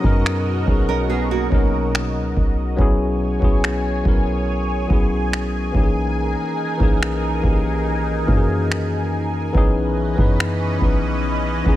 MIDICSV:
0, 0, Header, 1, 6, 480
1, 0, Start_track
1, 0, Key_signature, 5, "major"
1, 0, Tempo, 845070
1, 1583, Time_signature, 4, 2, 24, 8
1, 6681, End_track
2, 0, Start_track
2, 0, Title_t, "Analog synth pad"
2, 0, Program_c, 0, 89
2, 0, Note_on_c, 0, 47, 80
2, 0, Note_on_c, 0, 66, 75
2, 0, Note_on_c, 0, 70, 78
2, 0, Note_on_c, 0, 75, 89
2, 1561, Note_off_c, 0, 75, 0
2, 1564, Note_off_c, 0, 66, 0
2, 1564, Note_off_c, 0, 70, 0
2, 1581, Note_on_c, 0, 80, 88
2, 1582, Note_on_c, 0, 73, 79
2, 1583, Note_on_c, 0, 68, 76
2, 3240, Note_off_c, 0, 47, 0
2, 3246, Note_off_c, 0, 73, 0
2, 3266, Note_on_c, 0, 70, 74
2, 3267, Note_on_c, 0, 63, 79
2, 5399, Note_off_c, 0, 80, 0
2, 5400, Note_off_c, 0, 68, 0
2, 5403, Note_off_c, 0, 63, 0
2, 5403, Note_off_c, 0, 70, 0
2, 5428, Note_on_c, 0, 52, 75
2, 5428, Note_on_c, 0, 61, 80
2, 5428, Note_on_c, 0, 71, 75
2, 5428, Note_on_c, 0, 75, 96
2, 6681, Note_off_c, 0, 52, 0
2, 6681, Note_off_c, 0, 61, 0
2, 6681, Note_off_c, 0, 71, 0
2, 6681, Note_off_c, 0, 75, 0
2, 6681, End_track
3, 0, Start_track
3, 0, Title_t, "Nylon-string guitar"
3, 0, Program_c, 1, 24
3, 503, Note_on_c, 1, 70, 74
3, 507, Note_on_c, 1, 61, 64
3, 617, Note_off_c, 1, 70, 0
3, 619, Note_off_c, 1, 61, 0
3, 622, Note_on_c, 1, 68, 76
3, 627, Note_on_c, 1, 59, 70
3, 737, Note_off_c, 1, 68, 0
3, 739, Note_off_c, 1, 59, 0
3, 744, Note_on_c, 1, 58, 62
3, 745, Note_on_c, 1, 66, 73
3, 1441, Note_off_c, 1, 66, 0
3, 1442, Note_off_c, 1, 58, 0
3, 6681, End_track
4, 0, Start_track
4, 0, Title_t, "Tine electric piano"
4, 0, Program_c, 2, 4
4, 0, Control_c, 2, 64, 127
4, 0, Note_on_c, 2, 54, 106
4, 0, Note_on_c, 2, 59, 99
4, 0, Note_on_c, 2, 61, 104
4, 0, Note_on_c, 2, 63, 97
4, 0, Note_on_c, 2, 68, 63
4, 0, Note_on_c, 2, 70, 126
4, 6, Note_off_c, 2, 54, 0
4, 6, Note_on_c, 2, 54, 81
4, 14, Note_off_c, 2, 59, 0
4, 14, Note_on_c, 2, 59, 74
4, 21, Note_off_c, 2, 61, 0
4, 21, Note_on_c, 2, 61, 73
4, 27, Note_off_c, 2, 63, 0
4, 27, Note_on_c, 2, 63, 76
4, 35, Note_off_c, 2, 70, 0
4, 35, Note_on_c, 2, 70, 95
4, 276, Note_off_c, 2, 54, 0
4, 280, Note_off_c, 2, 59, 0
4, 284, Note_off_c, 2, 61, 0
4, 287, Note_off_c, 2, 63, 0
4, 291, Note_off_c, 2, 70, 0
4, 371, Note_on_c, 2, 54, 79
4, 377, Note_on_c, 2, 59, 74
4, 383, Note_on_c, 2, 61, 74
4, 391, Note_on_c, 2, 63, 72
4, 398, Note_off_c, 2, 68, 0
4, 398, Note_on_c, 2, 68, 80
4, 726, Note_off_c, 2, 54, 0
4, 729, Note_off_c, 2, 59, 0
4, 732, Note_off_c, 2, 61, 0
4, 736, Note_off_c, 2, 63, 0
4, 739, Note_off_c, 2, 68, 0
4, 848, Note_on_c, 2, 54, 85
4, 856, Note_on_c, 2, 59, 74
4, 863, Note_on_c, 2, 61, 78
4, 870, Note_on_c, 2, 63, 80
4, 877, Note_on_c, 2, 70, 91
4, 1379, Note_off_c, 2, 54, 0
4, 1383, Note_off_c, 2, 59, 0
4, 1386, Note_off_c, 2, 61, 0
4, 1390, Note_off_c, 2, 63, 0
4, 1393, Note_off_c, 2, 70, 0
4, 1569, Note_on_c, 2, 54, 108
4, 1576, Note_on_c, 2, 59, 102
4, 1582, Note_on_c, 2, 61, 99
4, 1590, Note_on_c, 2, 64, 96
4, 1592, Control_c, 2, 64, 0
4, 1598, Note_on_c, 2, 68, 118
4, 1706, Control_c, 2, 64, 127
4, 1838, Note_off_c, 2, 54, 0
4, 1841, Note_off_c, 2, 59, 0
4, 1844, Note_off_c, 2, 61, 0
4, 1848, Note_off_c, 2, 64, 0
4, 1852, Note_off_c, 2, 68, 0
4, 1929, Note_on_c, 2, 54, 85
4, 1936, Note_on_c, 2, 59, 76
4, 1943, Note_on_c, 2, 61, 73
4, 1951, Note_on_c, 2, 64, 74
4, 1956, Note_on_c, 2, 68, 89
4, 2198, Note_off_c, 2, 54, 0
4, 2201, Note_off_c, 2, 59, 0
4, 2205, Note_off_c, 2, 61, 0
4, 2208, Note_off_c, 2, 64, 0
4, 2211, Note_off_c, 2, 68, 0
4, 2291, Note_on_c, 2, 54, 74
4, 2297, Note_on_c, 2, 59, 71
4, 2306, Note_on_c, 2, 61, 70
4, 2313, Note_on_c, 2, 64, 72
4, 2319, Note_on_c, 2, 70, 86
4, 2646, Note_off_c, 2, 54, 0
4, 2649, Note_off_c, 2, 59, 0
4, 2653, Note_off_c, 2, 61, 0
4, 2657, Note_off_c, 2, 64, 0
4, 2660, Note_off_c, 2, 70, 0
4, 2770, Note_on_c, 2, 54, 81
4, 2777, Note_on_c, 2, 59, 80
4, 2785, Note_on_c, 2, 61, 77
4, 2792, Note_on_c, 2, 64, 76
4, 2799, Note_on_c, 2, 68, 93
4, 3249, Note_on_c, 2, 52, 93
4, 3255, Note_on_c, 2, 58, 83
4, 3256, Note_off_c, 2, 61, 0
4, 3257, Note_off_c, 2, 54, 0
4, 3260, Note_off_c, 2, 59, 0
4, 3263, Note_on_c, 2, 61, 80
4, 3267, Note_off_c, 2, 64, 0
4, 3269, Control_c, 2, 64, 0
4, 3271, Note_off_c, 2, 68, 0
4, 3271, Note_on_c, 2, 63, 80
4, 3277, Note_on_c, 2, 67, 83
4, 3307, Note_off_c, 2, 67, 0
4, 3314, Note_on_c, 2, 68, 99
4, 3386, Control_c, 2, 64, 127
4, 3736, Note_off_c, 2, 52, 0
4, 3739, Note_off_c, 2, 58, 0
4, 3743, Note_off_c, 2, 61, 0
4, 3747, Note_off_c, 2, 63, 0
4, 3769, Note_off_c, 2, 68, 0
4, 3849, Note_on_c, 2, 52, 85
4, 3857, Note_on_c, 2, 58, 74
4, 3863, Note_on_c, 2, 61, 75
4, 3871, Note_on_c, 2, 63, 77
4, 3878, Note_on_c, 2, 68, 92
4, 4118, Note_off_c, 2, 52, 0
4, 4122, Note_off_c, 2, 58, 0
4, 4125, Note_off_c, 2, 61, 0
4, 4129, Note_off_c, 2, 63, 0
4, 4132, Note_off_c, 2, 68, 0
4, 4210, Note_on_c, 2, 52, 74
4, 4217, Note_on_c, 2, 58, 68
4, 4224, Note_on_c, 2, 61, 69
4, 4231, Note_on_c, 2, 63, 72
4, 4238, Note_on_c, 2, 67, 68
4, 4268, Note_off_c, 2, 67, 0
4, 4275, Note_on_c, 2, 68, 87
4, 4566, Note_off_c, 2, 52, 0
4, 4569, Note_off_c, 2, 58, 0
4, 4572, Note_off_c, 2, 61, 0
4, 4576, Note_off_c, 2, 63, 0
4, 4598, Note_off_c, 2, 68, 0
4, 4690, Note_on_c, 2, 52, 85
4, 4697, Note_on_c, 2, 58, 77
4, 4705, Note_on_c, 2, 61, 75
4, 4712, Note_on_c, 2, 63, 77
4, 4718, Note_on_c, 2, 66, 71
4, 4747, Note_off_c, 2, 66, 0
4, 4755, Note_on_c, 2, 68, 91
4, 5220, Note_off_c, 2, 52, 0
4, 5224, Note_off_c, 2, 58, 0
4, 5227, Note_off_c, 2, 61, 0
4, 5231, Note_off_c, 2, 63, 0
4, 5252, Note_off_c, 2, 68, 0
4, 5411, Note_on_c, 2, 52, 111
4, 5417, Note_on_c, 2, 59, 100
4, 5425, Note_on_c, 2, 61, 99
4, 5431, Control_c, 2, 64, 0
4, 5432, Note_on_c, 2, 63, 98
4, 5438, Note_on_c, 2, 68, 118
4, 5527, Control_c, 2, 64, 127
4, 5678, Note_off_c, 2, 52, 0
4, 5682, Note_off_c, 2, 59, 0
4, 5686, Note_off_c, 2, 61, 0
4, 5689, Note_off_c, 2, 63, 0
4, 5692, Note_off_c, 2, 68, 0
4, 5769, Note_on_c, 2, 52, 78
4, 5776, Note_on_c, 2, 59, 76
4, 5783, Note_on_c, 2, 61, 76
4, 5790, Note_on_c, 2, 63, 78
4, 5798, Note_on_c, 2, 71, 93
4, 6038, Note_off_c, 2, 52, 0
4, 6041, Note_off_c, 2, 59, 0
4, 6045, Note_off_c, 2, 61, 0
4, 6048, Note_off_c, 2, 63, 0
4, 6052, Note_off_c, 2, 71, 0
4, 6130, Note_on_c, 2, 52, 80
4, 6137, Note_on_c, 2, 59, 70
4, 6144, Note_on_c, 2, 61, 76
4, 6151, Note_on_c, 2, 63, 72
4, 6158, Note_on_c, 2, 71, 86
4, 6485, Note_off_c, 2, 52, 0
4, 6489, Note_off_c, 2, 59, 0
4, 6492, Note_off_c, 2, 61, 0
4, 6496, Note_off_c, 2, 63, 0
4, 6499, Note_off_c, 2, 71, 0
4, 6609, Note_on_c, 2, 52, 89
4, 6618, Note_on_c, 2, 59, 74
4, 6624, Note_on_c, 2, 61, 77
4, 6632, Note_on_c, 2, 63, 79
4, 6638, Note_on_c, 2, 68, 99
4, 6681, Note_off_c, 2, 52, 0
4, 6681, Note_off_c, 2, 59, 0
4, 6681, Note_off_c, 2, 61, 0
4, 6681, Note_off_c, 2, 63, 0
4, 6681, Note_off_c, 2, 68, 0
4, 6681, End_track
5, 0, Start_track
5, 0, Title_t, "808-style bass"
5, 0, Program_c, 3, 38
5, 24, Note_on_c, 3, 42, 102
5, 369, Note_off_c, 3, 42, 0
5, 384, Note_on_c, 3, 35, 96
5, 844, Note_off_c, 3, 35, 0
5, 864, Note_on_c, 3, 35, 94
5, 1224, Note_on_c, 3, 37, 90
5, 1233, Note_off_c, 3, 35, 0
5, 1338, Note_off_c, 3, 37, 0
5, 1346, Note_on_c, 3, 35, 98
5, 1575, Note_off_c, 3, 35, 0
5, 1583, Note_on_c, 3, 35, 109
5, 1929, Note_off_c, 3, 35, 0
5, 1944, Note_on_c, 3, 35, 98
5, 2289, Note_off_c, 3, 35, 0
5, 2304, Note_on_c, 3, 35, 96
5, 2764, Note_off_c, 3, 35, 0
5, 2786, Note_on_c, 3, 35, 93
5, 3245, Note_off_c, 3, 35, 0
5, 3265, Note_on_c, 3, 35, 101
5, 3610, Note_off_c, 3, 35, 0
5, 3864, Note_on_c, 3, 35, 101
5, 4209, Note_off_c, 3, 35, 0
5, 4224, Note_on_c, 3, 35, 93
5, 4684, Note_off_c, 3, 35, 0
5, 4705, Note_on_c, 3, 42, 95
5, 5401, Note_off_c, 3, 42, 0
5, 5424, Note_on_c, 3, 35, 101
5, 5769, Note_off_c, 3, 35, 0
5, 5784, Note_on_c, 3, 42, 100
5, 6129, Note_off_c, 3, 42, 0
5, 6144, Note_on_c, 3, 35, 95
5, 6604, Note_off_c, 3, 35, 0
5, 6624, Note_on_c, 3, 35, 95
5, 6681, Note_off_c, 3, 35, 0
5, 6681, End_track
6, 0, Start_track
6, 0, Title_t, "Drums"
6, 22, Note_on_c, 9, 36, 92
6, 79, Note_off_c, 9, 36, 0
6, 148, Note_on_c, 9, 26, 115
6, 205, Note_off_c, 9, 26, 0
6, 382, Note_on_c, 9, 36, 88
6, 439, Note_off_c, 9, 36, 0
6, 863, Note_on_c, 9, 36, 89
6, 920, Note_off_c, 9, 36, 0
6, 1107, Note_on_c, 9, 26, 107
6, 1164, Note_off_c, 9, 26, 0
6, 1344, Note_on_c, 9, 36, 84
6, 1401, Note_off_c, 9, 36, 0
6, 1583, Note_on_c, 9, 36, 107
6, 1639, Note_off_c, 9, 36, 0
6, 1943, Note_on_c, 9, 36, 90
6, 2000, Note_off_c, 9, 36, 0
6, 2068, Note_on_c, 9, 26, 112
6, 2124, Note_off_c, 9, 26, 0
6, 2303, Note_on_c, 9, 36, 97
6, 2359, Note_off_c, 9, 36, 0
6, 2784, Note_on_c, 9, 36, 86
6, 2841, Note_off_c, 9, 36, 0
6, 3029, Note_on_c, 9, 26, 97
6, 3086, Note_off_c, 9, 26, 0
6, 3264, Note_on_c, 9, 36, 98
6, 3321, Note_off_c, 9, 36, 0
6, 3864, Note_on_c, 9, 36, 93
6, 3921, Note_off_c, 9, 36, 0
6, 3990, Note_on_c, 9, 26, 113
6, 4047, Note_off_c, 9, 26, 0
6, 4224, Note_on_c, 9, 36, 89
6, 4280, Note_off_c, 9, 36, 0
6, 4704, Note_on_c, 9, 36, 87
6, 4761, Note_off_c, 9, 36, 0
6, 4950, Note_on_c, 9, 26, 101
6, 5007, Note_off_c, 9, 26, 0
6, 5423, Note_on_c, 9, 36, 116
6, 5480, Note_off_c, 9, 36, 0
6, 5783, Note_on_c, 9, 36, 91
6, 5840, Note_off_c, 9, 36, 0
6, 5909, Note_on_c, 9, 26, 111
6, 5965, Note_off_c, 9, 26, 0
6, 6143, Note_on_c, 9, 36, 91
6, 6200, Note_off_c, 9, 36, 0
6, 6623, Note_on_c, 9, 36, 85
6, 6680, Note_off_c, 9, 36, 0
6, 6681, End_track
0, 0, End_of_file